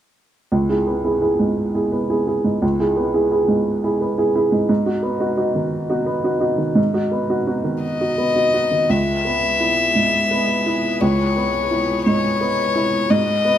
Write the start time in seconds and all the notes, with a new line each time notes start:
0.52 C#2
0.69 E4 G#4
0.87 B3
1.04 E4 G#4
1.22 E4 G#4
1.39 G#2
1.74 E4 G#4
1.92 B3
2.10 E4 G#4
2.27 E4 G#4
2.44 G#2
2.62 C#2
2.80 E4 G#4
2.96 B3
3.14 E4 G#4
3.31 E4 G#4
3.48 G#2
3.84 E4 G#4
4.01 B3
4.18 E4 G#4
4.35 E4 G#4
4.52 G#2
4.69 G#2
4.86 D#4 F#4
5.03 B3
5.20 D#4 F#4
5.37 D#4 F#4
5.55 D#3
5.90 D#4 F#4
6.06 B3
6.24 D#4 F#4
6.40 D#4 F#4
6.58 D#3
6.75 G#2
6.94 D#4 F#4
7.11 B3
7.30 D#4 F#4
7.47 D#4 F#4
7.64 D#3
7.82 D#5
8.01 D#4 F#4
8.18 B3
8.35 D#4 F#4
8.53 D#4 F#4
8.71 D#3
8.89 C#2 G#3 G#4 B4 E5
9.25 B3
9.60 E4
9.95 G#2
10.31 B3
10.66 E4
11.02 C#2 C#5
11.36 B3
11.71 E4
12.06 G#2 C#5
12.41 B3
12.76 E4
13.10 G#2 G#3 F#4 B4 D#5
13.45 B3